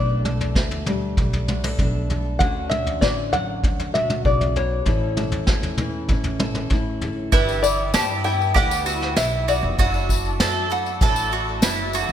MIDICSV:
0, 0, Header, 1, 7, 480
1, 0, Start_track
1, 0, Key_signature, 2, "major"
1, 0, Tempo, 615385
1, 1877, Time_signature, 4, 2, 24, 8
1, 9454, End_track
2, 0, Start_track
2, 0, Title_t, "Five-string banjo"
2, 0, Program_c, 0, 105
2, 0, Note_on_c, 0, 74, 62
2, 1606, Note_off_c, 0, 74, 0
2, 1864, Note_on_c, 0, 78, 80
2, 2099, Note_off_c, 0, 78, 0
2, 2102, Note_on_c, 0, 76, 84
2, 2350, Note_on_c, 0, 74, 72
2, 2358, Note_off_c, 0, 76, 0
2, 2577, Note_off_c, 0, 74, 0
2, 2595, Note_on_c, 0, 78, 86
2, 3046, Note_off_c, 0, 78, 0
2, 3073, Note_on_c, 0, 76, 70
2, 3315, Note_off_c, 0, 76, 0
2, 3319, Note_on_c, 0, 74, 70
2, 3562, Note_on_c, 0, 73, 60
2, 3566, Note_off_c, 0, 74, 0
2, 5449, Note_off_c, 0, 73, 0
2, 5719, Note_on_c, 0, 71, 77
2, 5948, Note_on_c, 0, 74, 84
2, 5966, Note_off_c, 0, 71, 0
2, 6192, Note_off_c, 0, 74, 0
2, 6195, Note_on_c, 0, 81, 96
2, 6419, Note_off_c, 0, 81, 0
2, 6432, Note_on_c, 0, 79, 84
2, 6674, Note_off_c, 0, 79, 0
2, 6677, Note_on_c, 0, 78, 97
2, 7125, Note_off_c, 0, 78, 0
2, 7155, Note_on_c, 0, 76, 92
2, 7399, Note_on_c, 0, 74, 77
2, 7402, Note_off_c, 0, 76, 0
2, 9279, Note_off_c, 0, 74, 0
2, 9454, End_track
3, 0, Start_track
3, 0, Title_t, "Mandolin"
3, 0, Program_c, 1, 25
3, 5711, Note_on_c, 1, 64, 78
3, 6185, Note_off_c, 1, 64, 0
3, 6194, Note_on_c, 1, 67, 76
3, 6427, Note_off_c, 1, 67, 0
3, 6430, Note_on_c, 1, 64, 73
3, 6661, Note_off_c, 1, 64, 0
3, 6664, Note_on_c, 1, 67, 77
3, 6905, Note_off_c, 1, 67, 0
3, 6911, Note_on_c, 1, 66, 65
3, 7146, Note_off_c, 1, 66, 0
3, 7149, Note_on_c, 1, 64, 78
3, 7387, Note_off_c, 1, 64, 0
3, 7396, Note_on_c, 1, 66, 68
3, 7630, Note_off_c, 1, 66, 0
3, 7638, Note_on_c, 1, 66, 84
3, 8105, Note_off_c, 1, 66, 0
3, 8114, Note_on_c, 1, 69, 77
3, 8347, Note_off_c, 1, 69, 0
3, 8359, Note_on_c, 1, 66, 72
3, 8589, Note_off_c, 1, 66, 0
3, 8598, Note_on_c, 1, 69, 77
3, 8829, Note_off_c, 1, 69, 0
3, 8835, Note_on_c, 1, 66, 71
3, 9067, Note_off_c, 1, 66, 0
3, 9072, Note_on_c, 1, 64, 78
3, 9305, Note_off_c, 1, 64, 0
3, 9319, Note_on_c, 1, 66, 73
3, 9454, Note_off_c, 1, 66, 0
3, 9454, End_track
4, 0, Start_track
4, 0, Title_t, "Steel-string acoustic guitar"
4, 0, Program_c, 2, 25
4, 0, Note_on_c, 2, 47, 57
4, 0, Note_on_c, 2, 52, 56
4, 0, Note_on_c, 2, 57, 49
4, 0, Note_on_c, 2, 62, 48
4, 0, Note_on_c, 2, 69, 56
4, 190, Note_off_c, 2, 69, 0
4, 193, Note_on_c, 2, 69, 53
4, 438, Note_off_c, 2, 57, 0
4, 441, Note_on_c, 2, 57, 54
4, 674, Note_off_c, 2, 52, 0
4, 683, Note_on_c, 2, 55, 50
4, 685, Note_off_c, 2, 62, 0
4, 688, Note_on_c, 2, 62, 49
4, 927, Note_off_c, 2, 57, 0
4, 930, Note_on_c, 2, 57, 51
4, 1159, Note_off_c, 2, 69, 0
4, 1162, Note_on_c, 2, 66, 50
4, 1280, Note_off_c, 2, 66, 0
4, 1280, Note_on_c, 2, 69, 46
4, 1391, Note_off_c, 2, 47, 0
4, 1398, Note_off_c, 2, 62, 0
4, 1400, Note_on_c, 2, 47, 46
4, 1408, Note_on_c, 2, 62, 46
4, 1637, Note_off_c, 2, 69, 0
4, 1646, Note_on_c, 2, 69, 56
4, 1852, Note_off_c, 2, 55, 0
4, 1854, Note_off_c, 2, 62, 0
4, 1876, Note_off_c, 2, 47, 0
4, 1879, Note_on_c, 2, 50, 66
4, 1880, Note_off_c, 2, 57, 0
4, 1883, Note_on_c, 2, 61, 47
4, 1888, Note_on_c, 2, 62, 50
4, 1893, Note_off_c, 2, 69, 0
4, 1896, Note_on_c, 2, 66, 58
4, 2108, Note_off_c, 2, 66, 0
4, 2117, Note_on_c, 2, 66, 55
4, 2601, Note_on_c, 2, 54, 52
4, 2604, Note_off_c, 2, 62, 0
4, 3066, Note_off_c, 2, 66, 0
4, 3076, Note_on_c, 2, 66, 54
4, 3309, Note_off_c, 2, 50, 0
4, 3312, Note_on_c, 2, 49, 47
4, 3554, Note_off_c, 2, 49, 0
4, 3558, Note_on_c, 2, 47, 51
4, 3581, Note_off_c, 2, 61, 0
4, 3772, Note_off_c, 2, 54, 0
4, 3788, Note_on_c, 2, 45, 59
4, 3795, Note_on_c, 2, 61, 53
4, 3798, Note_off_c, 2, 66, 0
4, 3799, Note_off_c, 2, 47, 0
4, 3801, Note_on_c, 2, 64, 53
4, 3808, Note_on_c, 2, 69, 55
4, 4036, Note_off_c, 2, 69, 0
4, 4045, Note_on_c, 2, 69, 52
4, 4276, Note_off_c, 2, 61, 0
4, 4285, Note_on_c, 2, 61, 51
4, 4517, Note_off_c, 2, 64, 0
4, 4517, Note_on_c, 2, 52, 47
4, 4526, Note_on_c, 2, 64, 47
4, 4760, Note_off_c, 2, 61, 0
4, 4770, Note_on_c, 2, 61, 50
4, 5003, Note_off_c, 2, 69, 0
4, 5011, Note_on_c, 2, 69, 49
4, 5234, Note_off_c, 2, 45, 0
4, 5243, Note_off_c, 2, 64, 0
4, 5243, Note_on_c, 2, 45, 49
4, 5253, Note_on_c, 2, 64, 48
4, 5481, Note_off_c, 2, 69, 0
4, 5490, Note_on_c, 2, 69, 56
4, 5692, Note_off_c, 2, 45, 0
4, 5695, Note_off_c, 2, 61, 0
4, 5696, Note_off_c, 2, 69, 0
4, 5697, Note_off_c, 2, 64, 0
4, 7632, Note_off_c, 2, 52, 0
4, 9454, End_track
5, 0, Start_track
5, 0, Title_t, "Twelve-string acoustic guitar"
5, 0, Program_c, 3, 25
5, 5711, Note_on_c, 3, 43, 63
5, 5715, Note_on_c, 3, 50, 71
5, 5719, Note_on_c, 3, 55, 72
5, 5720, Note_on_c, 3, 52, 71
5, 5722, Note_on_c, 3, 59, 64
5, 5722, Note_on_c, 3, 64, 75
5, 5945, Note_off_c, 3, 64, 0
5, 5952, Note_off_c, 3, 59, 0
5, 5955, Note_off_c, 3, 43, 0
5, 5955, Note_on_c, 3, 64, 51
5, 5957, Note_off_c, 3, 50, 0
5, 5959, Note_off_c, 3, 52, 0
5, 5959, Note_off_c, 3, 55, 0
5, 5962, Note_on_c, 3, 59, 48
5, 5968, Note_on_c, 3, 55, 46
5, 5971, Note_on_c, 3, 52, 41
5, 6186, Note_off_c, 3, 52, 0
5, 6190, Note_off_c, 3, 55, 0
5, 6196, Note_off_c, 3, 59, 0
5, 6196, Note_off_c, 3, 64, 0
5, 6196, Note_on_c, 3, 52, 59
5, 6199, Note_on_c, 3, 55, 63
5, 6206, Note_on_c, 3, 59, 63
5, 6209, Note_on_c, 3, 64, 64
5, 6430, Note_off_c, 3, 64, 0
5, 6436, Note_off_c, 3, 52, 0
5, 6437, Note_off_c, 3, 59, 0
5, 6438, Note_off_c, 3, 55, 0
5, 6439, Note_on_c, 3, 64, 60
5, 6447, Note_on_c, 3, 59, 51
5, 6450, Note_on_c, 3, 55, 46
5, 6456, Note_on_c, 3, 52, 44
5, 6673, Note_off_c, 3, 52, 0
5, 6674, Note_off_c, 3, 55, 0
5, 6675, Note_off_c, 3, 59, 0
5, 6678, Note_off_c, 3, 64, 0
5, 6680, Note_on_c, 3, 43, 71
5, 6680, Note_on_c, 3, 50, 77
5, 6682, Note_on_c, 3, 52, 76
5, 6684, Note_on_c, 3, 55, 81
5, 6685, Note_on_c, 3, 59, 76
5, 6687, Note_on_c, 3, 64, 86
5, 6907, Note_off_c, 3, 64, 0
5, 6911, Note_off_c, 3, 59, 0
5, 6916, Note_off_c, 3, 55, 0
5, 6916, Note_on_c, 3, 64, 50
5, 6918, Note_off_c, 3, 43, 0
5, 6918, Note_off_c, 3, 50, 0
5, 6919, Note_off_c, 3, 52, 0
5, 6921, Note_on_c, 3, 59, 49
5, 6925, Note_on_c, 3, 55, 49
5, 6929, Note_on_c, 3, 52, 44
5, 7144, Note_off_c, 3, 52, 0
5, 7150, Note_off_c, 3, 55, 0
5, 7154, Note_on_c, 3, 52, 57
5, 7156, Note_off_c, 3, 59, 0
5, 7156, Note_off_c, 3, 64, 0
5, 7159, Note_on_c, 3, 55, 59
5, 7166, Note_on_c, 3, 59, 61
5, 7169, Note_on_c, 3, 64, 54
5, 7382, Note_off_c, 3, 64, 0
5, 7387, Note_off_c, 3, 59, 0
5, 7392, Note_off_c, 3, 55, 0
5, 7392, Note_on_c, 3, 64, 49
5, 7394, Note_off_c, 3, 52, 0
5, 7396, Note_on_c, 3, 59, 51
5, 7402, Note_on_c, 3, 55, 41
5, 7406, Note_on_c, 3, 52, 42
5, 7628, Note_off_c, 3, 52, 0
5, 7631, Note_on_c, 3, 54, 69
5, 7632, Note_off_c, 3, 55, 0
5, 7633, Note_off_c, 3, 64, 0
5, 7634, Note_off_c, 3, 59, 0
5, 7635, Note_on_c, 3, 57, 75
5, 7637, Note_on_c, 3, 62, 81
5, 7642, Note_on_c, 3, 64, 78
5, 7861, Note_off_c, 3, 64, 0
5, 7870, Note_on_c, 3, 64, 48
5, 7871, Note_off_c, 3, 62, 0
5, 7872, Note_off_c, 3, 54, 0
5, 7874, Note_off_c, 3, 57, 0
5, 7880, Note_on_c, 3, 62, 49
5, 7885, Note_on_c, 3, 57, 39
5, 8108, Note_off_c, 3, 57, 0
5, 8110, Note_off_c, 3, 62, 0
5, 8111, Note_off_c, 3, 64, 0
5, 8112, Note_on_c, 3, 54, 64
5, 8117, Note_on_c, 3, 57, 65
5, 8119, Note_on_c, 3, 62, 72
5, 8126, Note_on_c, 3, 64, 69
5, 8335, Note_off_c, 3, 64, 0
5, 8344, Note_on_c, 3, 64, 58
5, 8346, Note_off_c, 3, 62, 0
5, 8351, Note_off_c, 3, 54, 0
5, 8351, Note_off_c, 3, 57, 0
5, 8355, Note_on_c, 3, 62, 55
5, 8360, Note_on_c, 3, 57, 52
5, 8586, Note_off_c, 3, 57, 0
5, 8587, Note_off_c, 3, 64, 0
5, 8590, Note_off_c, 3, 62, 0
5, 8590, Note_on_c, 3, 54, 85
5, 8595, Note_on_c, 3, 57, 83
5, 8599, Note_on_c, 3, 62, 84
5, 8601, Note_on_c, 3, 64, 86
5, 8820, Note_off_c, 3, 64, 0
5, 8829, Note_off_c, 3, 54, 0
5, 8829, Note_off_c, 3, 62, 0
5, 8829, Note_on_c, 3, 64, 59
5, 8832, Note_off_c, 3, 57, 0
5, 8839, Note_on_c, 3, 62, 56
5, 8845, Note_on_c, 3, 57, 50
5, 9065, Note_off_c, 3, 57, 0
5, 9068, Note_off_c, 3, 64, 0
5, 9068, Note_on_c, 3, 54, 61
5, 9073, Note_off_c, 3, 62, 0
5, 9074, Note_on_c, 3, 57, 60
5, 9084, Note_on_c, 3, 62, 65
5, 9087, Note_on_c, 3, 64, 70
5, 9298, Note_off_c, 3, 64, 0
5, 9307, Note_off_c, 3, 54, 0
5, 9307, Note_on_c, 3, 64, 59
5, 9309, Note_off_c, 3, 62, 0
5, 9310, Note_off_c, 3, 57, 0
5, 9319, Note_on_c, 3, 62, 51
5, 9324, Note_on_c, 3, 57, 49
5, 9454, Note_off_c, 3, 57, 0
5, 9454, Note_off_c, 3, 62, 0
5, 9454, Note_off_c, 3, 64, 0
5, 9454, End_track
6, 0, Start_track
6, 0, Title_t, "Upright bass"
6, 0, Program_c, 4, 32
6, 0, Note_on_c, 4, 35, 83
6, 406, Note_off_c, 4, 35, 0
6, 431, Note_on_c, 4, 38, 69
6, 888, Note_off_c, 4, 38, 0
6, 913, Note_on_c, 4, 35, 75
6, 1369, Note_off_c, 4, 35, 0
6, 1393, Note_on_c, 4, 35, 77
6, 1850, Note_off_c, 4, 35, 0
6, 1872, Note_on_c, 4, 38, 89
6, 2330, Note_off_c, 4, 38, 0
6, 2355, Note_on_c, 4, 33, 77
6, 2812, Note_off_c, 4, 33, 0
6, 2839, Note_on_c, 4, 38, 76
6, 3294, Note_off_c, 4, 38, 0
6, 3314, Note_on_c, 4, 35, 82
6, 3772, Note_off_c, 4, 35, 0
6, 3793, Note_on_c, 4, 33, 81
6, 4251, Note_off_c, 4, 33, 0
6, 4270, Note_on_c, 4, 40, 68
6, 4729, Note_off_c, 4, 40, 0
6, 4749, Note_on_c, 4, 33, 76
6, 5209, Note_off_c, 4, 33, 0
6, 5230, Note_on_c, 4, 33, 69
6, 5450, Note_off_c, 4, 33, 0
6, 5472, Note_on_c, 4, 31, 63
6, 5691, Note_off_c, 4, 31, 0
6, 5713, Note_on_c, 4, 31, 91
6, 6170, Note_off_c, 4, 31, 0
6, 6197, Note_on_c, 4, 43, 81
6, 6651, Note_off_c, 4, 43, 0
6, 6674, Note_on_c, 4, 38, 87
6, 7129, Note_off_c, 4, 38, 0
6, 7155, Note_on_c, 4, 35, 81
6, 7495, Note_off_c, 4, 35, 0
6, 7509, Note_on_c, 4, 29, 89
6, 7625, Note_off_c, 4, 29, 0
6, 7633, Note_on_c, 4, 30, 93
6, 8086, Note_off_c, 4, 30, 0
6, 8108, Note_on_c, 4, 42, 83
6, 8563, Note_off_c, 4, 42, 0
6, 8591, Note_on_c, 4, 33, 94
6, 9043, Note_off_c, 4, 33, 0
6, 9062, Note_on_c, 4, 30, 91
6, 9405, Note_off_c, 4, 30, 0
6, 9429, Note_on_c, 4, 30, 86
6, 9454, Note_off_c, 4, 30, 0
6, 9454, End_track
7, 0, Start_track
7, 0, Title_t, "Drums"
7, 196, Note_on_c, 9, 47, 60
7, 274, Note_off_c, 9, 47, 0
7, 317, Note_on_c, 9, 43, 65
7, 395, Note_off_c, 9, 43, 0
7, 432, Note_on_c, 9, 36, 89
7, 435, Note_on_c, 9, 38, 65
7, 510, Note_off_c, 9, 36, 0
7, 513, Note_off_c, 9, 38, 0
7, 553, Note_on_c, 9, 43, 61
7, 631, Note_off_c, 9, 43, 0
7, 674, Note_on_c, 9, 43, 67
7, 674, Note_on_c, 9, 47, 59
7, 752, Note_off_c, 9, 43, 0
7, 752, Note_off_c, 9, 47, 0
7, 915, Note_on_c, 9, 36, 94
7, 916, Note_on_c, 9, 43, 72
7, 993, Note_off_c, 9, 36, 0
7, 994, Note_off_c, 9, 43, 0
7, 1039, Note_on_c, 9, 43, 68
7, 1117, Note_off_c, 9, 43, 0
7, 1156, Note_on_c, 9, 47, 67
7, 1234, Note_off_c, 9, 47, 0
7, 1277, Note_on_c, 9, 47, 61
7, 1355, Note_off_c, 9, 47, 0
7, 1394, Note_on_c, 9, 43, 62
7, 1395, Note_on_c, 9, 36, 86
7, 1472, Note_off_c, 9, 43, 0
7, 1473, Note_off_c, 9, 36, 0
7, 1637, Note_on_c, 9, 43, 67
7, 1715, Note_off_c, 9, 43, 0
7, 1874, Note_on_c, 9, 43, 76
7, 1875, Note_on_c, 9, 36, 93
7, 1952, Note_off_c, 9, 43, 0
7, 1953, Note_off_c, 9, 36, 0
7, 2114, Note_on_c, 9, 47, 68
7, 2192, Note_off_c, 9, 47, 0
7, 2235, Note_on_c, 9, 43, 66
7, 2313, Note_off_c, 9, 43, 0
7, 2355, Note_on_c, 9, 36, 83
7, 2356, Note_on_c, 9, 38, 66
7, 2433, Note_off_c, 9, 36, 0
7, 2434, Note_off_c, 9, 38, 0
7, 2597, Note_on_c, 9, 43, 66
7, 2675, Note_off_c, 9, 43, 0
7, 2836, Note_on_c, 9, 36, 93
7, 2838, Note_on_c, 9, 43, 77
7, 2914, Note_off_c, 9, 36, 0
7, 2916, Note_off_c, 9, 43, 0
7, 2960, Note_on_c, 9, 43, 67
7, 3038, Note_off_c, 9, 43, 0
7, 3079, Note_on_c, 9, 47, 64
7, 3157, Note_off_c, 9, 47, 0
7, 3196, Note_on_c, 9, 47, 61
7, 3274, Note_off_c, 9, 47, 0
7, 3315, Note_on_c, 9, 36, 92
7, 3393, Note_off_c, 9, 36, 0
7, 3439, Note_on_c, 9, 43, 60
7, 3517, Note_off_c, 9, 43, 0
7, 3556, Note_on_c, 9, 43, 64
7, 3634, Note_off_c, 9, 43, 0
7, 3788, Note_on_c, 9, 43, 71
7, 3792, Note_on_c, 9, 36, 87
7, 3866, Note_off_c, 9, 43, 0
7, 3870, Note_off_c, 9, 36, 0
7, 4032, Note_on_c, 9, 47, 63
7, 4110, Note_off_c, 9, 47, 0
7, 4147, Note_on_c, 9, 43, 69
7, 4225, Note_off_c, 9, 43, 0
7, 4265, Note_on_c, 9, 38, 67
7, 4271, Note_on_c, 9, 36, 94
7, 4343, Note_off_c, 9, 38, 0
7, 4349, Note_off_c, 9, 36, 0
7, 4391, Note_on_c, 9, 43, 65
7, 4469, Note_off_c, 9, 43, 0
7, 4505, Note_on_c, 9, 43, 69
7, 4505, Note_on_c, 9, 47, 57
7, 4583, Note_off_c, 9, 43, 0
7, 4583, Note_off_c, 9, 47, 0
7, 4746, Note_on_c, 9, 43, 72
7, 4750, Note_on_c, 9, 36, 93
7, 4824, Note_off_c, 9, 43, 0
7, 4828, Note_off_c, 9, 36, 0
7, 4865, Note_on_c, 9, 43, 68
7, 4943, Note_off_c, 9, 43, 0
7, 4988, Note_on_c, 9, 47, 72
7, 5066, Note_off_c, 9, 47, 0
7, 5106, Note_on_c, 9, 47, 60
7, 5184, Note_off_c, 9, 47, 0
7, 5226, Note_on_c, 9, 43, 62
7, 5231, Note_on_c, 9, 36, 96
7, 5304, Note_off_c, 9, 43, 0
7, 5309, Note_off_c, 9, 36, 0
7, 5471, Note_on_c, 9, 43, 66
7, 5549, Note_off_c, 9, 43, 0
7, 5712, Note_on_c, 9, 42, 62
7, 5712, Note_on_c, 9, 54, 25
7, 5714, Note_on_c, 9, 36, 106
7, 5790, Note_off_c, 9, 42, 0
7, 5790, Note_off_c, 9, 54, 0
7, 5792, Note_off_c, 9, 36, 0
7, 5839, Note_on_c, 9, 54, 27
7, 5917, Note_off_c, 9, 54, 0
7, 5956, Note_on_c, 9, 54, 75
7, 6034, Note_off_c, 9, 54, 0
7, 6191, Note_on_c, 9, 54, 88
7, 6192, Note_on_c, 9, 38, 103
7, 6192, Note_on_c, 9, 42, 57
7, 6269, Note_off_c, 9, 54, 0
7, 6270, Note_off_c, 9, 38, 0
7, 6270, Note_off_c, 9, 42, 0
7, 6440, Note_on_c, 9, 54, 26
7, 6518, Note_off_c, 9, 54, 0
7, 6565, Note_on_c, 9, 54, 25
7, 6643, Note_off_c, 9, 54, 0
7, 6674, Note_on_c, 9, 42, 63
7, 6675, Note_on_c, 9, 36, 109
7, 6678, Note_on_c, 9, 54, 26
7, 6752, Note_off_c, 9, 42, 0
7, 6753, Note_off_c, 9, 36, 0
7, 6756, Note_off_c, 9, 54, 0
7, 6795, Note_on_c, 9, 54, 72
7, 6873, Note_off_c, 9, 54, 0
7, 6910, Note_on_c, 9, 54, 63
7, 6988, Note_off_c, 9, 54, 0
7, 7033, Note_on_c, 9, 38, 29
7, 7111, Note_off_c, 9, 38, 0
7, 7150, Note_on_c, 9, 38, 104
7, 7150, Note_on_c, 9, 42, 62
7, 7152, Note_on_c, 9, 54, 88
7, 7228, Note_off_c, 9, 38, 0
7, 7228, Note_off_c, 9, 42, 0
7, 7230, Note_off_c, 9, 54, 0
7, 7399, Note_on_c, 9, 54, 67
7, 7477, Note_off_c, 9, 54, 0
7, 7631, Note_on_c, 9, 42, 63
7, 7634, Note_on_c, 9, 36, 107
7, 7637, Note_on_c, 9, 54, 22
7, 7709, Note_off_c, 9, 42, 0
7, 7712, Note_off_c, 9, 36, 0
7, 7715, Note_off_c, 9, 54, 0
7, 7754, Note_on_c, 9, 54, 24
7, 7832, Note_off_c, 9, 54, 0
7, 7873, Note_on_c, 9, 36, 69
7, 7878, Note_on_c, 9, 54, 71
7, 7951, Note_off_c, 9, 36, 0
7, 7956, Note_off_c, 9, 54, 0
7, 7994, Note_on_c, 9, 54, 25
7, 8072, Note_off_c, 9, 54, 0
7, 8111, Note_on_c, 9, 38, 107
7, 8111, Note_on_c, 9, 42, 62
7, 8114, Note_on_c, 9, 54, 73
7, 8189, Note_off_c, 9, 38, 0
7, 8189, Note_off_c, 9, 42, 0
7, 8192, Note_off_c, 9, 54, 0
7, 8350, Note_on_c, 9, 54, 22
7, 8428, Note_off_c, 9, 54, 0
7, 8472, Note_on_c, 9, 54, 25
7, 8550, Note_off_c, 9, 54, 0
7, 8586, Note_on_c, 9, 54, 26
7, 8588, Note_on_c, 9, 42, 61
7, 8589, Note_on_c, 9, 36, 112
7, 8664, Note_off_c, 9, 54, 0
7, 8666, Note_off_c, 9, 42, 0
7, 8667, Note_off_c, 9, 36, 0
7, 8705, Note_on_c, 9, 54, 63
7, 8783, Note_off_c, 9, 54, 0
7, 9064, Note_on_c, 9, 54, 83
7, 9067, Note_on_c, 9, 38, 106
7, 9067, Note_on_c, 9, 42, 57
7, 9142, Note_off_c, 9, 54, 0
7, 9145, Note_off_c, 9, 38, 0
7, 9145, Note_off_c, 9, 42, 0
7, 9307, Note_on_c, 9, 54, 60
7, 9385, Note_off_c, 9, 54, 0
7, 9428, Note_on_c, 9, 54, 21
7, 9454, Note_off_c, 9, 54, 0
7, 9454, End_track
0, 0, End_of_file